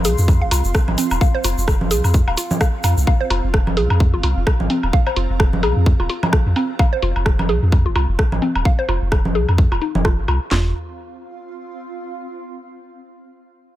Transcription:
Already playing: C4 F4 F5 C6
0.05 C2 G#4, open hi-hat, shaker
0.18 F2, shaker
0.28 kick, low woodblock, shaker
0.42 F1 F5
0.51 C2 F4, open hi-hat, low woodblock, shaker
0.64 F1, shaker
0.74 kick, cross-stick, shaker
0.88 G#1, low conga, low woodblock
0.98 C4, open hi-hat, shaker
1.10 D#1, low woodblock, shaker
1.21 F5, kick, shaker
1.35 C5
1.44 F1 F4, open hi-hat, low woodblock, shaker
1.58 F1, shaker
1.68 kick, cross-stick, low woodblock, shaker
1.81 low conga
1.91 C2 G#4, open hi-hat, shaker
2.04 F2, low woodblock, shaker
2.14 kick, shaker
2.28 D#1 F5, low woodblock
2.37 F4, open hi-hat, shaker
2.51 low conga, shaker
2.61 F5, kick, cross-stick, low woodblock, shaker
2.84 F2 F5, open hi-hat, low woodblock, shaker
2.97 C2, shaker
3.07 F5, kick, low woodblock
3.21 C5
3.30 F1 F4, open hi-hat, low woodblock
3.44 F1
3.53 A#5, kick, cross-stick
3.67 low conga, low woodblock
3.77 C2 G#4, open hi-hat
3.90 F2, low woodblock
4.00 kick
4.14 F1 F4
4.23 C2 F4, open hi-hat, low woodblock
4.37 F1
4.47 kick, cross-stick, low woodblock
4.60 G#1, low conga
4.70 C4, open hi-hat
4.83 D#1, low woodblock
4.93 F5, kick
5.07 C5, low woodblock
5.16 F1 F4, open hi-hat
5.30 F1
5.40 kick, cross-stick, low woodblock
5.53 low conga
5.63 C2 G#4, open hi-hat, low woodblock
5.76 F2
5.86 kick
6.00 D#1 F4, low woodblock
6.10 F4, open hi-hat
6.23 low conga, low woodblock
6.33 kick, cross-stick
6.46 F2
6.56 C4, open hi-hat, low woodblock
6.79 F5, kick, low woodblock
6.93 C5
7.02 F1 F4, open hi-hat
7.16 F1, low woodblock
7.26 kick, cross-stick
7.39 low conga, low woodblock
7.49 C2 G#4, open hi-hat
7.63 F2
7.72 kick, low woodblock
7.86 F1 F4
7.96 C2 F4, open hi-hat, low woodblock
8.09 F1
8.19 kick, cross-stick
8.32 G#1, low conga, low woodblock
8.42 C4, open hi-hat
8.55 D#1, low woodblock
8.65 F5, kick
8.79 C5
8.89 F1 F4, open hi-hat, low woodblock
9.02 F1
9.12 kick, cross-stick, low woodblock
9.25 low conga
9.35 C2 G#4, open hi-hat
9.49 F2, low woodblock
9.58 kick
9.72 F1 F4, low woodblock
9.82 D#4, open hi-hat
9.95 F1, low conga
10.05 F4, kick, cross-stick, low woodblock
10.18 G#1
10.28 C2 F4, open hi-hat, low woodblock
10.51 F1 C4 F4, snare, clap, floor tom
10.60 F4
10.67 F5
10.73 C6

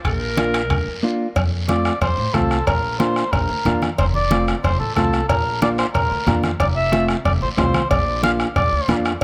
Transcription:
0.04 A#1 A#4, bombo low, bombo rim, high conga, high timbale, long guiro
0.37 A#3 D4 F4, bombo rim, high conga, high timbale, short guiro
0.54 bombo rim, high timbale, short guiro
0.70 D2, bombo low, bombo rim, high conga, high timbale, long guiro
0.87 F2
1.03 A#3 D4 F4
1.35 F2, bombo low, bombo rim, cowbell, high conga, long guiro
1.68 A3 C4 F4 D5, bombo rim, high conga, short guiro
1.85 bombo rim, short guiro
2.01 F2 C5, bombo low, bombo rim, cowbell, high conga, long guiro
2.18 A2
2.34 C2 A3 C4 F4 A4, bombo low, bombo rim, high conga, short guiro
2.51 bombo rim, short guiro
2.67 A#1 A#4, bombo low, bombo rim, cowbell, high conga, long guiro
2.99 A#3 D4 F4 C5, bombo rim, high conga, short guiro
3.16 bombo rim, short guiro
3.32 A#1 A#4, bombo low, bombo rim, cowbell, high conga, long guiro
3.49 D2
3.65 F2 A#3 D4 F4, bombo rim, high conga, low conga, short guiro
3.82 bombo rim, high conga, short guiro
3.98 F1 C5, bombo low, bombo rim, cowbell, high conga, long guiro
4.14 D5, high conga
4.31 A3 C4 F4, bombo rim, high conga, short guiro
4.48 bombo rim, short guiro
4.63 F1 C5, bombo low, bombo rim, cowbell, high conga, long guiro
4.79 A1 A4
4.95 C2 A3 C4 F4 A4, bombo low, bombo rim, high conga, short guiro
5.13 bombo rim, short guiro
5.29 A#1 A#4, bombo low, bombo rim, cowbell, high conga, long guiro
5.62 A#3 D4 F4 D5, bombo rim, high conga, short guiro
5.78 C5, bombo rim, short guiro
5.94 A#1 A#4, bombo low, bombo rim, cowbell, high conga, long guiro
6.11 D2
6.27 F2 A#3 D4 F4, bombo low, bombo rim, high conga, low conga, short guiro
6.43 bombo rim, high conga, short guiro
6.60 F1 D5, bombo low, bombo rim, cowbell, high conga, long guiro
6.76 E5
6.92 A3 C4 F4, bombo rim, high conga, short guiro
7.08 bombo rim, short guiro
7.25 F1 D5, bombo low, bombo rim, cowbell, high conga, long guiro
7.41 A1 C5
7.57 C2 A3 C4 F4 C5, bombo low, bombo rim, high conga, low timbale, short guiro
7.74 bombo rim, high conga, short guiro
7.90 A#1 D5, bombo low, bombo rim, cowbell, high conga, long guiro
8.23 A#3 D4 F4 F5, bombo rim, high conga, short guiro
8.40 bombo rim, short guiro
8.56 A#1 D5, bombo low, bombo rim, cowbell, high conga, long guiro
8.72 D2
8.88 F2 A#3 D4 F4, bombo rim, high conga, low conga, short guiro
9.05 bombo rim, short guiro

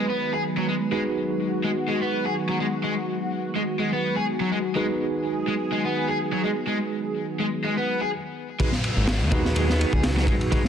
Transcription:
Already playing: D#3 F#3 G#3 B3 D#4 F#4 G#4 B4
0.09 B3
0.33 G#4
0.57 F#3
0.68 G#3
0.92 G#3 D#4 F#4 G#4 B4
1.64 G#3
1.88 G#3
2.01 B3
2.25 G#4
2.49 F#3
2.60 G#3
2.84 G#3
3.56 G#3
3.80 G#3
3.93 B3
4.17 G#4
4.41 F#3
4.52 G#3
4.75 G#3 D#4 F#4 G#4 B4
5.48 G#3
5.72 G#3
5.85 B3
6.09 G#4
6.33 F#3
6.44 G#3
6.68 G#3
7.40 G#3
7.64 G#3
7.77 B3
8.01 G#4
8.59 D#3 F#3 G#3 B3 D#4 F#4 G#4 B4, kick, ride, downlifter
8.72 snare
8.84 ride
8.97 G#1
9.08 snare, ride
9.21 D#2
9.32 G#3 D#4 F#4 G#4 B4, kick, ride
9.45 snare
9.56 G#3, ride
9.69 B3, snare
9.81 ride
9.93 C#2 G#4, kick
10.03 snare, ride
10.17 F#3, snare
10.27 G#1 G#3, kick, ride
10.41 ride
10.51 G#3 D#4 F#4 G#4 B4, kick, ride
10.65 snare

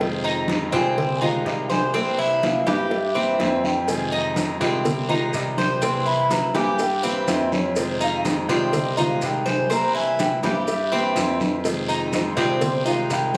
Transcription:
Already playing: F2
0.00 C3 D#3 G#3 C4 F4, cowbell, high conga, long guiro
0.24 D#4, high conga
0.48 D#3 G#3 C4 F4, cowbell, high conga, short guiro
0.72 C2 D#3 G#3 C4 F4 G#5, high conga, short guiro
0.97 muted steel-string acoustic guitar stroke, cowbell, high conga, low conga, long guiro
1.21 D#3 G#3 C4 D#4 F4 F5, high conga, low conga
1.46 C2 D#3 G#3 C4 F4, cowbell, high conga, short guiro
1.70 C5 G#5, high conga, short guiro
1.94 C3 E3 A#3 C4 E4, cowbell, high conga, long guiro
2.19 E4, high conga
2.42 E3 A#3 C4 E4 F5, cowbell, high conga, short guiro
2.67 G2 E3 A#3 C4 E4 G4 D#5, cowbell, high conga, short guiro
2.91 E5, muted steel-string acoustic guitar stroke, cowbell, high conga, long guiro
3.15 E3 A#3 C4 E4, high conga
3.39 F2 E3 A#3 C4 E4, cowbell, high conga, short guiro
3.64 G5, high conga, short guiro
3.88 C3 D#3 G#3 C4 F4 G#5, cowbell, high conga, long guiro, maracas
4.12 D#4 D#5, high conga
4.36 D#3 G#3 C4 F4, cowbell, high conga, short guiro, maracas
4.60 C2 D#3 G#3 C4 F4, high conga, short guiro, maracas
4.84 muted steel-string acoustic guitar stroke, cowbell, high conga, low conga, long guiro, maracas
5.08 D#3 G#3 C4 D#4 F4, high conga, low conga
5.33 C2 D#3 G#3 C4 F4, cowbell, high conga, short guiro, maracas
5.57 C5, high conga, short guiro, maracas
5.82 C3 E3 A#3 C4 E4 C6, cowbell, high conga, long guiro, maracas
6.06 E4 B5, high conga
6.30 E3 A#3 C4 E4 A#5, cowbell, high conga, short guiro, maracas
6.54 G2 E3 A#3 C4 E4 G4 G#5, cowbell, high conga, short guiro, maracas
6.79 G5, muted steel-string acoustic guitar stroke, cowbell, high conga, long guiro, maracas
7.03 E3 A#3 C4 E4 F5, high conga, maracas
7.27 F2 E3 A#3 C4 E4 E5, cowbell, high conga, short guiro, maracas
7.52 C#5, high conga, short guiro, maracas
7.76 C3 D#3 G#3 C4 F4 C5, cowbell, high conga, long guiro, maracas
8.01 D#4 F5, high conga, maracas
8.24 D#3 G#3 C4 F4, cowbell, high conga, short guiro, maracas
8.49 C2 D#3 G#3 C4 F4, high conga, short guiro, maracas
8.73 D#5, muted steel-string acoustic guitar stroke, cowbell, high conga, low conga, long guiro, maracas
8.97 D#3 G#3 C4 D#4 F4 F5, high conga, low conga, maracas
9.22 C2 D#3 G#3 C4 F4 G5, cowbell, high conga, short guiro, maracas
9.46 C5 G#5, high conga, short guiro, maracas
9.70 C3 E3 A#3 C4 E4 A#5, cowbell, long guiro, maracas
9.95 E4 G#5, high conga
10.18 E3 A#3 C4 E4 G5, cowbell, high conga, short guiro, maracas
10.43 G2 E3 A#3 C4 E4 G4 E5, cowbell, high conga, short guiro, maracas
10.67 muted steel-string acoustic guitar stroke, cowbell, high conga, long guiro, maracas
10.92 E3 A#3 C4 E4, high conga
11.16 F2 E3 A#3 C4 E4, cowbell, high conga, short guiro, maracas
11.40 high conga, short guiro, maracas
11.64 C3 D#3 G#3 C4 F4, cowbell, high conga, long guiro, maracas
11.89 D#4, high conga, maracas
12.13 D#3 G#3 C4 F4 C5, cowbell, high conga, short guiro, maracas
12.37 C2 D#3 G#3 C4 F4, high conga, short guiro, maracas
12.61 muted steel-string acoustic guitar stroke, cowbell, high conga, low conga, long guiro, maracas
12.85 D#3 G#3 C4 D#4 F4 F5, high conga, maracas
13.10 C2 D#3 G#3 C4 F4 G5, cowbell, high conga, short guiro, maracas
13.34 high conga

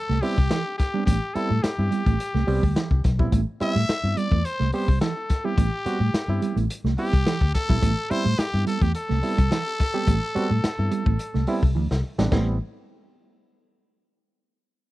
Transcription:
Already playing: A4
0.09 C2 A3, snare
0.21 G3 B3 C4 E4 G4, open hi-hat
0.37 C2 G3, kick
0.51 E3 C4 E4, snare, closed hi-hat
0.66 C4 D4
0.78 G4, muted clean electric guitar stroke, kick, snare, closed hi-hat
0.94 G3 B3 C4 D4
1.05 A1 A3 G4, kick, closed hi-hat
1.34 G3 B3 C4 E4 A4, muted clean electric guitar stroke, muted fingered electric bass stroke, closed hi-hat
1.50 A2 G3
1.63 C4 E4 G4, muted clean electric guitar stroke, muted fingered electric bass stroke, snare, closed hi-hat
1.78 G2 G3 B3 C4 E4
1.91 G3, closed hi-hat
2.06 A1 A3, kick, closed hi-hat
2.20 closed hi-hat
2.34 C2 A3, snare
2.48 C2 G3 B3 C4 G4, muted clean electric guitar stroke, open hi-hat
2.62 D2 G3, kick
2.76 E3 E4, snare, closed hi-hat
2.91 C2 C4 E4, kick
3.04 B1, muted clean electric guitar stroke, kick, snare, closed hi-hat
3.19 A#1 G3 B3 C4 E4, kick
3.32 A1 A3, kick, closed hi-hat
3.60 G3 B3 C4 E4 E5, muted clean electric guitar stroke, muted fingered electric bass stroke, closed hi-hat
3.75 A2 G3, snare
3.89 muted clean electric guitar stroke, muted fingered electric bass stroke, snare, closed hi-hat
4.04 G2 G3 B3 C4 E4
4.17 G3 D5, closed hi-hat
4.31 E2 A3, kick
4.45 C5, closed hi-hat
4.60 C2 A3, snare
4.73 G3 B3 C4 G4 C5, muted clean electric guitar stroke, open hi-hat
4.88 C2 G3, kick
5.01 E3 C4 E4 A4, snare, closed hi-hat
5.16 C4 E4
5.30 muted clean electric guitar stroke, kick, snare, closed hi-hat
5.44 G3 B3 C4 E4 G4
5.58 A1 A3, kick, closed hi-hat
5.86 G3 B3 C4 F#4, muted fingered electric bass stroke, muted clean electric guitar stroke, closed hi-hat
6.00 A2 G3
6.14 C4 E4, muted clean electric guitar stroke, muted fingered electric bass stroke, snare, closed hi-hat
6.28 G2 G3 B3 C4 E4
6.42 G3, closed hi-hat
6.56 A1 A3, closed hi-hat
6.70 closed hi-hat
6.84 C2 A3, snare
6.98 G3 B3 C4 E4 G4, muted clean electric guitar stroke, open hi-hat
7.13 C2 G3, kick, closed hi-hat
7.26 E3, snare, closed hi-hat
7.41 D2 C4 E4, kick
7.54 A4, muted clean electric guitar stroke, kick, snare, closed hi-hat
7.69 A#1 G3 B3 C4 E4, kick
7.82 A1 A3, kick, closed hi-hat
8.10 G3 B3 C4 E4 C5, muted clean electric guitar stroke, muted fingered electric bass stroke, closed hi-hat
8.25 A2 G3
8.39 C4 E4 G4, muted fingered electric bass stroke, snare, closed hi-hat
8.53 G2 G3 B3 C4 E4
8.66 G3 A4, closed hi-hat
8.81 E2 A3 G4, kick, closed hi-hat
8.95 A4, closed hi-hat
9.09 C2 A3, snare
9.23 G3 B3 C4 E4, muted clean electric guitar stroke, open hi-hat
9.37 C2 G3, kick, closed hi-hat
9.51 E3 C4 F#4, snare, closed hi-hat
9.66 C4 G4
9.79 muted clean electric guitar stroke, kick, snare, closed hi-hat
9.94 G3 B3 C4 G4
10.07 A1 A3, kick, closed hi-hat
10.35 G3 B3 C4 F#4, muted clean electric guitar stroke, muted fingered electric bass stroke, closed hi-hat
10.50 A2 G3
10.63 C4 E4, muted clean electric guitar stroke, muted fingered electric bass stroke, snare, closed hi-hat
10.78 G2 G3 B3 C4 E4
10.91 G3, closed hi-hat
11.06 A1 A3, kick
11.19 closed hi-hat
11.34 C2 A3, snare
11.47 G3 B3 C4 E4, muted clean electric guitar stroke, open hi-hat
11.62 C2 G3, kick
11.75 D2 E3 C4 G4
11.90 C2 C4 E4, snare
12.03 muted clean electric guitar stroke
12.18 A1 G3 B3 C4 D4, snare
12.31 A1 G3 A3 B3 C4 E4, kick, snare, china

